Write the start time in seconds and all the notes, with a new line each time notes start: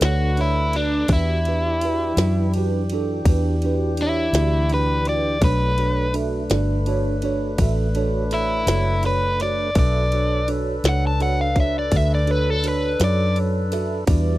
Already playing: A3 D4 B4
0.01 D2 D4 F#4 A4 C#5, snare, ride
0.37 D4 E4 F#4 A4 C#5, ride
0.73 D4 F#4 A4 D5, ride
1.08 E2 E3 D4 F#4 G4 B4, kick, ride
1.13 E4
1.45 D4 F#4 G4 B4, ride
1.81 D4 F#4 G4 B4, ride
2.17 F#2 D4 F#4 G4, snare, ride
2.21 B4
2.54 D4 F#4 G4, ride
2.58 B4
2.90 D4 F#4 G4, ride
2.94 A4
3.25 E2 D4 F#4 G4, kick, ride
3.29 B4
3.62 D4 F#4 G4, ride
3.66 B4
3.97 D4 F#4 G4, ride
4.01 E4 C#5
4.33 D2 D4 F#4 G4 D5, snare, ride
4.70 D4 F#4 G4, ride
4.74 B4
5.05 D4 F#4 G4 B4 D5, ride
5.41 B1 A3 D4 F#4 A4 B4 C#5, kick, ride
5.78 D4 F#4 A4 C#5, ride
6.14 D4 F#4 A4 E5, ride
6.50 G1 D4 F#4 A4 D5, snare, ride
6.86 D4 F#4 A4 C#5, ride
7.22 D4 F#4 A4 C#5, ride
7.58 A1 D4 F#4 A4 E5, kick, ride
7.95 D4 F#4 A4 C#5, ride
8.31 D4 E4 F#4 A4 C#5, ride
8.67 F#1 D4 F#4 A4 C#5, snare, ride
9.03 D4 F#4 A4 B4 C#5, ride
9.40 D4 F#4 A4 C#5 D5, snare, ride
9.75 B1 D4 F#4 A4 B4 D5 E5, kick, ride
10.12 D4 F#4 A4 C#5, ride
10.48 D4 F#4 A4 C#5, ride
10.84 C#2 D4 F#4 A4 C#5, snare, ride
10.89 F#5
11.07 A5
11.20 D4 F#4 A4 C#5 F#5, ride
11.41 F5
11.56 D4 F#4 A4 C#5, kick, ride
11.60 E5
11.79 D5
11.92 D2 D4 F#4 A4 E5, kick, ride
11.96 E5
12.15 D5
12.26 D4 F#4 A4 C#5, ride
12.31 B4
12.50 A4
12.64 D4 F#4 A4 C#5, ride
12.68 B4
12.99 F#2 D4 F#4 A4 C#5, snare, ride
13.04 D5
13.35 D4 F#4 A4 C#5, ride
13.71 D4 F#4 A4 E5, snare, ride
14.07 E2 G3 D4 E4 F#4 G4 B4 D5, kick, ride